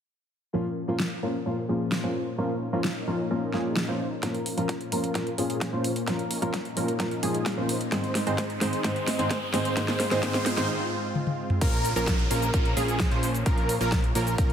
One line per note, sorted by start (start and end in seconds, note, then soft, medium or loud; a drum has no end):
0.53 0.63 A#2 medium
0.53 4.19 A#2 medium
0.53 0.63 F3 medium
0.53 0.83 F3 medium
0.53 4.19 A#3 medium
0.53 0.63 A#3 medium
0.53 0.83 A#3 medium
0.53 4.19 C#4 medium
0.53 0.83 C#4 medium
0.53 0.64 C#4 medium
0.53 2.36 F4 medium
0.53 0.83 F4 medium
0.53 0.64 F4 medium
0.53 0.83 A#4 loud
0.88 0.98 A#2 medium
0.88 0.98 F3 medium
0.88 1.07 F3 medium
0.88 0.98 A#3 medium
0.88 1.07 A#3 medium
0.88 1.07 C#4 medium
0.88 0.98 C#4 medium
0.88 1.07 F4 medium
0.88 0.98 F4 medium
0.88 1.07 A#4 loud
1.00 snare loud
1.22 1.32 A#2 medium
1.22 1.32 F3 medium
1.22 1.43 F3 medium
1.22 1.33 A#3 medium
1.22 1.43 A#3 medium
1.22 1.43 C#4 medium
1.22 1.33 C#4 medium
1.22 1.43 F4 medium
1.22 1.33 F4 medium
1.22 1.43 A#4 medium
1.45 1.55 A#2 medium
1.45 1.56 F3 medium
1.45 1.66 F3 medium
1.45 1.66 A#3 medium
1.45 1.56 A#3 medium
1.45 1.66 C#4 medium
1.45 1.56 C#4 medium
1.45 1.66 F4 medium
1.45 1.56 F4 medium
1.45 1.66 A#4 medium
1.68 2.01 A#2 medium
1.68 2.01 F3 medium
1.68 2.01 A#3 medium
1.68 2.01 C#4 medium
1.68 2.01 F4 medium
1.68 2.01 G#4 medium
1.92 snare loud
2.03 2.13 A#2 medium
2.03 2.13 F3 medium
2.03 2.22 F3 medium
2.03 2.22 A#3 medium
2.03 2.13 A#3 medium
2.03 2.22 C#4 medium
2.03 2.14 C#4 medium
2.03 2.22 F4 medium
2.03 2.14 F4 medium
2.03 2.22 C5 medium
2.38 2.48 A#2 medium
2.38 2.48 F3 medium
2.38 2.67 F3 medium
2.38 2.67 A#3 medium
2.38 2.48 A#3 medium
2.38 2.67 C#4 medium
2.38 2.48 C#4 medium
2.38 4.21 D#4 medium
2.38 2.67 F4 medium
2.38 2.48 F4 medium
2.38 2.67 A#4 loud
2.72 2.82 A#2 medium
2.72 2.83 F3 medium
2.72 2.91 F3 loud
2.72 2.91 A#3 medium
2.72 2.83 A#3 medium
2.72 2.91 C#4 medium
2.72 2.83 C#4 medium
2.72 2.91 F4 medium
2.72 2.83 F4 loud
2.72 2.91 A#4 loud
2.84 snare loud
3.07 3.17 A#2 medium
3.07 3.17 F3 medium
3.07 3.27 F3 medium
3.07 3.27 A#3 medium
3.07 3.17 A#3 medium
3.07 3.27 C#4 medium
3.07 3.17 C#4 medium
3.07 3.27 F4 medium
3.07 3.18 F4 medium
3.07 3.27 A#4 medium
3.30 3.40 A#2 medium
3.30 3.40 F3 medium
3.30 3.51 F3 medium
3.30 3.51 A#3 medium
3.30 3.40 A#3 medium
3.30 3.51 C#4 medium
3.30 3.40 C#4 medium
3.30 3.51 F4 medium
3.30 3.41 F4 medium
3.30 3.51 A#4 medium
3.53 3.85 A#2 medium
3.53 3.85 F3 medium
3.53 3.86 F3 medium
3.53 3.86 A#3 medium
3.53 3.86 C#4 medium
3.53 3.86 F4 medium
3.53 3.86 G#4 loud
3.53 snare soft
3.77 snare loud
3.88 3.98 A#2 medium
3.88 3.98 F3 medium
3.88 4.07 F3 medium
3.88 4.07 A#3 medium
3.88 3.98 A#3 medium
3.88 4.07 C#4 medium
3.88 3.98 C#4 medium
3.88 4.07 F4 medium
3.88 3.98 F4 medium
3.88 4.07 C5 medium
4.22 4.32 A#2 medium
4.22 7.88 A#2 medium
4.22 4.32 F3 medium
4.22 4.52 F3 medium
4.22 7.88 A#3 medium
4.22 4.52 A#3 medium
4.22 4.33 A#3 medium
4.22 4.52 C#4 medium
4.22 7.89 C#4 medium
4.22 4.33 C#4 medium
4.22 6.06 F4 medium
4.22 4.52 F4 medium
4.22 4.33 F4 loud
4.22 4.52 A#4 loud
4.22 4.52 A#4 medium
4.22 kick loud
4.22 snare soft
4.22 closed hi-hat medium
4.22 riser medium
4.34 closed hi-hat soft
4.46 open hi-hat loud
4.57 4.67 A#2 medium
4.57 4.67 F3 medium
4.57 4.76 F3 loud
4.57 4.67 A#3 medium
4.57 4.76 A#3 medium
4.57 4.76 C#4 medium
4.57 4.67 C#4 medium
4.57 4.76 F4 medium
4.57 4.68 F4 loud
4.57 4.76 A#4 loud
4.57 closed hi-hat soft
4.69 kick loud
4.69 snare soft
4.69 closed hi-hat medium
4.81 closed hi-hat soft
4.91 5.01 A#2 medium
4.91 5.02 F3 medium
4.91 5.12 F3 medium
4.91 5.02 A#3 medium
4.91 5.12 A#3 medium
4.91 5.12 C#4 medium
4.91 5.02 C#4 medium
4.91 5.12 F4 medium
4.91 5.02 F4 medium
4.91 5.12 A#4 loud
4.91 5.12 A#4 medium
4.91 open hi-hat loud
5.04 closed hi-hat medium
5.15 5.25 A#2 medium
5.15 5.25 F3 medium
5.15 5.36 F3 medium
5.15 5.36 A#3 medium
5.15 5.25 A#3 medium
5.15 5.36 C#4 medium
5.15 5.25 C#4 medium
5.15 5.36 F4 medium
5.15 5.25 F4 medium
5.15 5.36 A#4 medium
5.15 kick loud
5.15 snare soft
5.15 closed hi-hat medium
5.27 closed hi-hat soft
5.38 5.70 A#2 medium
5.38 5.70 F3 medium
5.38 5.70 A#3 medium
5.38 5.70 C#4 medium
5.38 5.70 F4 medium
5.38 5.70 G#4 loud
5.38 5.70 G#4 medium
5.38 open hi-hat loud
5.50 closed hi-hat medium
5.61 kick loud
5.61 snare medium
5.61 closed hi-hat medium
5.72 5.82 A#2 medium
5.72 5.82 F3 medium
5.72 5.91 F3 medium
5.72 5.83 A#3 medium
5.72 5.91 A#3 medium
5.72 5.91 C#4 medium
5.72 5.83 C#4 medium
5.72 5.91 F4 medium
5.72 5.83 F4 medium
5.72 5.91 C5 medium
5.84 open hi-hat loud
5.96 closed hi-hat medium
6.07 6.17 A#2 medium
6.07 6.17 F3 medium
6.07 6.37 F3 medium
6.07 6.37 A#3 medium
6.07 6.17 A#3 medium
6.07 6.37 C#4 medium
6.07 6.17 C#4 medium
6.07 9.73 D#4 medium
6.07 6.37 F4 medium
6.07 6.17 F4 loud
6.07 6.37 A#4 loud
6.07 kick loud
6.07 snare medium
6.07 closed hi-hat medium
6.19 closed hi-hat soft
6.31 open hi-hat loud
6.41 6.51 A#2 medium
6.41 6.52 F3 medium
6.41 6.60 F3 loud
6.41 6.52 A#3 medium
6.41 6.60 A#3 medium
6.41 6.60 C#4 medium
6.41 6.52 C#4 medium
6.41 6.60 F4 medium
6.41 6.52 F4 loud
6.41 6.60 A#4 loud
6.41 closed hi-hat medium
6.54 kick loud
6.54 snare medium
6.54 closed hi-hat medium
6.65 closed hi-hat soft
6.76 6.86 A#2 medium
6.76 6.86 F3 medium
6.76 6.96 F3 medium
6.76 6.86 A#3 medium
6.76 6.96 A#3 medium
6.76 6.96 C#4 medium
6.76 6.87 C#4 medium
6.76 6.96 F4 medium
6.76 6.87 F4 loud
6.76 6.96 A#4 loud
6.76 open hi-hat loud
6.88 closed hi-hat medium
6.99 7.09 A#2 medium
6.99 7.09 F3 medium
6.99 7.20 F3 medium
6.99 7.10 A#3 medium
6.99 7.20 A#3 medium
6.99 7.20 C#4 medium
6.99 7.10 C#4 medium
6.99 7.20 F4 medium
6.99 7.10 F4 medium
6.99 7.20 A#4 medium
6.99 kick loud
6.99 snare medium
6.99 closed hi-hat medium
7.11 closed hi-hat soft
7.22 7.54 A#2 medium
7.22 7.55 F3 medium
7.22 7.55 A#3 medium
7.22 7.55 C#4 medium
7.22 7.55 F4 medium
7.22 7.55 G#4 loud
7.22 open hi-hat loud
7.34 closed hi-hat soft
7.46 kick loud
7.46 snare medium
7.46 closed hi-hat medium
7.57 7.67 A#2 medium
7.57 7.67 F3 medium
7.57 7.76 F3 medium
7.57 7.67 A#3 medium
7.57 7.76 A#3 medium
7.57 7.76 C#4 medium
7.57 7.67 C#4 medium
7.57 7.76 F4 medium
7.57 7.67 F4 medium
7.57 7.76 C5 medium
7.69 open hi-hat loud
7.81 closed hi-hat soft
7.91 8.02 G#2 medium
7.91 11.58 G#2 medium
7.91 8.02 D#3 medium
7.91 8.02 G#3 medium
7.91 8.21 G#3 medium
7.91 11.58 G#3 medium
7.91 8.21 C4 medium
7.91 11.58 C4 medium
7.91 8.02 C4 medium
7.91 8.21 D#4 medium
7.91 8.02 D#4 medium
7.91 8.21 G#4 medium
7.91 8.21 C5 medium
7.91 kick loud
7.91 snare medium
7.91 closed hi-hat medium
8.04 closed hi-hat soft
8.15 snare medium
8.15 open hi-hat loud
8.26 8.36 G#2 medium
8.26 8.36 D#3 medium
8.26 8.36 G#3 medium
8.26 8.45 G#3 medium
8.26 8.45 C4 medium
8.26 8.37 C4 medium
8.26 8.45 D#4 medium
8.26 8.37 D#4 loud
8.26 8.45 G#4 medium
8.26 8.45 C5 loud
8.26 closed hi-hat soft
8.38 kick loud
8.38 snare medium
8.38 closed hi-hat medium
8.50 closed hi-hat soft
8.61 8.71 G#2 medium
8.61 8.71 D#3 medium
8.61 8.71 G#3 medium
8.61 8.81 G#3 medium
8.61 8.81 C4 medium
8.61 8.71 C4 medium
8.61 8.81 D#4 medium
8.61 8.71 D#4 medium
8.61 8.81 G#4 medium
8.61 8.81 C5 medium
8.61 snare medium
8.61 open hi-hat loud
8.73 closed hi-hat medium
8.84 8.94 G#2 medium
8.84 8.94 D#3 medium
8.84 8.94 G#3 medium
8.84 9.14 G#3 medium
8.84 9.14 C4 medium
8.84 8.94 C4 medium
8.84 9.14 D#4 medium
8.84 8.94 D#4 loud
8.84 9.14 G#4 medium
8.84 9.14 C5 loud
8.84 kick loud
8.84 snare medium
8.84 closed hi-hat medium
8.96 closed hi-hat soft
9.08 snare medium
9.08 open hi-hat loud
9.18 9.28 G#2 medium
9.18 9.29 D#3 medium
9.18 9.29 G#3 medium
9.18 9.37 G#3 loud
9.18 9.37 C4 medium
9.18 9.29 C4 medium
9.18 9.37 D#4 medium
9.18 9.29 D#4 loud
9.18 9.37 G#4 medium
9.18 9.37 C5 loud
9.18 closed hi-hat soft
9.31 kick loud
9.31 snare medium
9.31 closed hi-hat medium
9.53 9.63 G#2 medium
9.53 9.63 D#3 medium
9.53 9.63 G#3 medium
9.53 9.73 G#3 medium
9.53 9.73 C4 medium
9.53 9.64 C4 medium
9.53 9.73 D#4 medium
9.53 9.64 D#4 medium
9.53 9.73 G#4 medium
9.53 9.73 C5 medium
9.53 9.73 C5 loud
9.53 snare medium
9.53 open hi-hat loud
9.65 closed hi-hat medium
9.76 9.86 G#2 medium
9.76 9.86 D#3 medium
9.76 10.06 G#3 medium
9.76 9.86 G#3 medium
9.76 10.06 C4 medium
9.76 9.87 C4 medium
9.76 10.06 D#4 medium
9.76 9.87 D#4 loud
9.76 11.60 F4 medium
9.76 10.06 G#4 medium
9.76 10.06 C5 loud
9.76 kick loud
9.76 snare loud
9.76 closed hi-hat medium
9.88 snare medium
9.88 closed hi-hat soft
10.00 snare medium
10.00 open hi-hat loud
10.11 10.21 G#2 medium
10.11 10.21 D#3 medium
10.11 10.21 G#3 loud
10.11 10.21 G#3 medium
10.11 10.21 C4 medium
10.11 10.21 D#4 loud
10.11 10.21 G#4 medium
10.11 10.21 C5 loud
10.11 snare medium
10.11 closed hi-hat medium
10.22 10.32 G#2 medium
10.22 10.32 D#3 medium
10.22 10.52 G#3 loud
10.22 10.33 G#3 medium
10.22 10.52 C4 medium
10.22 10.33 C4 medium
10.22 10.52 D#4 medium
10.22 10.33 D#4 loud
10.22 10.52 G#4 medium
10.22 10.52 C5 loud
10.22 kick loud
10.22 snare medium
10.22 closed hi-hat medium
10.34 snare medium
10.34 closed hi-hat soft
10.46 snare loud
10.46 open hi-hat loud
10.57 10.67 G#2 loud
10.57 10.67 D#3 medium
10.57 10.67 G#3 medium
10.57 10.67 G#3 loud
10.57 10.67 C4 medium
10.57 10.67 D#4 medium
10.57 10.68 D#4 loud
10.57 10.67 G#4 medium
10.57 10.67 C5 loud
10.57 snare medium
10.57 closed hi-hat medium
11.15 high tom medium
11.27 high tom medium
11.50 mid tom medium
11.61 11.94 A#1 medium
11.61 11.90 F3 loud
11.61 14.53 F3 medium
11.61 11.90 A#3 medium
11.61 14.53 A#3 medium
11.61 11.90 C#4 medium
11.61 14.53 C#4 medium
11.61 11.90 F4 medium
11.61 11.90 A#4 loud
11.61 kick loud
11.61 closed hi-hat loud
11.61 crash loud
11.61 downlifter medium
11.61 shaker soft
11.73 closed hi-hat soft
11.85 open hi-hat loud
11.85 shaker medium
11.96 12.28 A#1 loud
11.96 12.14 F3 loud
11.96 12.14 A#3 loud
11.96 12.14 C#4 medium
11.96 12.14 F4 loud
11.96 12.14 A#4 loud
11.96 closed hi-hat soft
11.96 shaker soft
12.07 kick loud
12.07 snare loud
12.07 closed hi-hat loud
12.07 shaker soft
12.19 closed hi-hat soft
12.31 12.51 A#1 loud
12.31 12.50 F3 medium
12.31 12.50 A#3 medium
12.31 12.50 C#4 medium
12.31 12.50 F4 medium
12.31 12.50 A#4 loud
12.31 open hi-hat loud
12.31 shaker medium
12.42 closed hi-hat soft
12.42 shaker soft
12.54 12.75 A#1 loud
12.54 12.74 F3 medium
12.54 12.74 A#3 medium
12.54 12.74 C#4 medium
12.54 12.74 F4 medium
12.54 12.74 A#4 medium
12.54 kick loud
12.54 closed hi-hat loud
12.54 shaker soft
12.65 closed hi-hat soft
12.77 13.09 A#1 loud
12.77 13.09 F3 medium
12.77 13.09 A#3 medium
12.77 13.09 C#4 medium
12.77 13.09 F4 medium
12.77 13.09 G#4 loud
12.77 open hi-hat loud
12.77 shaker medium
12.88 closed hi-hat soft
12.88 shaker soft
13.00 kick loud
13.00 snare loud
13.00 closed hi-hat loud
13.00 shaker soft
13.11 13.44 A#1 medium
13.11 13.30 F3 medium
13.11 13.30 A#3 medium
13.11 13.30 C#4 medium
13.11 13.30 F4 medium
13.11 13.30 C5 medium
13.11 closed hi-hat soft
13.23 open hi-hat loud
13.23 shaker medium
13.35 closed hi-hat soft
13.35 shaker soft
13.46 13.78 A#1 medium
13.46 13.75 F3 loud
13.46 13.75 A#3 medium
13.46 13.75 C#4 medium
13.46 13.75 F4 medium
13.46 13.75 A#4 loud
13.46 kick loud
13.46 closed hi-hat loud
13.46 shaker soft
13.58 closed hi-hat soft
13.69 open hi-hat loud
13.69 shaker medium
13.81 14.13 A#1 medium
13.81 13.99 F3 loud
13.81 13.99 A#3 medium
13.81 13.99 C#4 medium
13.81 13.99 F4 medium
13.81 13.99 A#4 loud
13.81 closed hi-hat soft
13.81 shaker soft
13.92 kick loud
13.92 snare loud
13.92 closed hi-hat medium
13.92 shaker soft
14.04 closed hi-hat soft
14.15 14.36 A#1 loud
14.15 14.35 F3 medium
14.15 14.35 A#3 medium
14.15 14.35 C#4 medium
14.15 14.35 F4 medium
14.15 14.35 A#4 loud
14.15 open hi-hat loud
14.15 shaker medium
14.27 closed hi-hat soft
14.27 shaker soft
14.38 14.53 A#1 loud
14.38 14.53 F3 medium
14.38 14.53 A#3 medium
14.38 14.53 C#4 medium
14.38 14.53 F4 medium
14.38 14.53 A#4 medium
14.38 kick loud
14.38 closed hi-hat medium
14.38 shaker soft
14.50 closed hi-hat soft